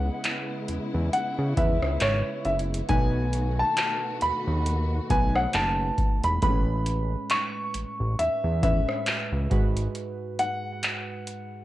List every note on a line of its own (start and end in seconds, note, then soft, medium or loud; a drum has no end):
0.00 0.10 C#2 loud
0.00 0.66 C#3 medium
0.00 2.86 C#3 medium
0.00 0.66 G#3 medium
0.00 2.85 G#3 medium
0.00 6.38 B3 medium
0.00 0.70 E4 medium
0.00 2.86 E4 medium
0.00 0.67 B4 loud
0.00 1.12 F#5 medium
0.24 clap loud
0.24 closed hi-hat medium
0.68 0.79 E2 soft
0.68 closed hi-hat medium
0.94 1.10 E2 medium
1.13 1.58 F#5 medium
1.13 closed hi-hat medium
1.38 1.54 C#3 loud
1.56 1.78 E2 medium
1.56 2.55 C#3 medium
1.56 2.56 G#3 medium
1.56 2.56 E4 medium
1.56 2.56 B4 medium
1.56 2.02 E5 medium
1.56 kick loud
1.56 closed hi-hat medium
1.82 1.98 C#2 medium
1.82 cross-stick medium
2.00 2.23 G#1 loud
2.00 2.42 C#5 medium
2.00 clap loud
2.00 closed hi-hat medium
2.45 2.82 F#1 medium
2.45 2.55 E5 medium
2.45 closed hi-hat soft
2.59 closed hi-hat medium
2.74 closed hi-hat medium
2.88 3.63 B1 loud
2.88 4.19 B2 medium
2.88 6.39 D#3 medium
2.88 4.19 A3 medium
2.88 6.39 A3 medium
2.88 4.20 D#4 medium
2.88 6.39 F#4 medium
2.88 4.20 B4 medium
2.88 3.61 G#5 loud
2.88 kick loud
2.88 closed hi-hat medium
3.33 closed hi-hat medium
3.59 4.18 A5 medium
3.77 clap loud
3.77 closed hi-hat medium
4.21 4.32 D#2 soft
4.21 5.06 B5 loud
4.21 closed hi-hat medium
4.47 5.00 D#2 medium
4.66 closed hi-hat medium
5.09 5.47 B1 medium
5.09 6.08 B2 medium
5.09 6.09 A3 medium
5.09 6.09 D#4 medium
5.09 6.09 B4 medium
5.09 5.36 G#5 loud
5.09 kick loud
5.09 closed hi-hat medium
5.35 5.55 F#5 loud
5.35 cross-stick medium
5.53 5.91 F#1 loud
5.53 6.26 A5 loud
5.53 clap loud
5.53 closed hi-hat medium
5.98 kick loud
5.98 closed hi-hat soft
6.24 6.39 E1 medium
6.24 6.41 B5 loud
6.24 closed hi-hat medium
6.42 7.16 A1 loud
6.42 7.72 A2 medium
6.42 7.72 G#3 medium
6.42 6.50 B3 medium
6.42 7.73 B4 medium
6.42 7.33 B5 loud
6.42 kick loud
6.42 closed hi-hat medium
6.49 7.76 C#4 medium
6.86 closed hi-hat medium
7.30 8.15 C#6 loud
7.30 clap loud
7.30 closed hi-hat medium
7.74 7.85 A1 soft
7.74 closed hi-hat medium
8.00 8.16 A1 medium
8.19 8.29 E2 soft
8.19 8.60 E5 loud
8.19 closed hi-hat medium
8.44 8.81 E2 loud
8.62 9.51 A2 medium
8.62 9.49 G#3 medium
8.62 9.51 C#4 medium
8.62 9.51 B4 medium
8.62 9.47 E5 loud
8.62 kick medium
8.62 closed hi-hat medium
8.89 cross-stick medium
9.06 clap loud
9.06 closed hi-hat medium
9.32 9.48 C#2 medium
9.50 9.88 G#1 medium
9.50 10.93 G#2 medium
9.50 10.93 G#3 medium
9.50 10.94 F#4 medium
9.50 10.94 B4 medium
9.50 kick loud
9.50 closed hi-hat soft
9.77 closed hi-hat medium
9.95 closed hi-hat medium
10.39 11.64 F#5 loud
10.39 closed hi-hat medium
10.83 clap loud
10.83 closed hi-hat medium
11.27 closed hi-hat medium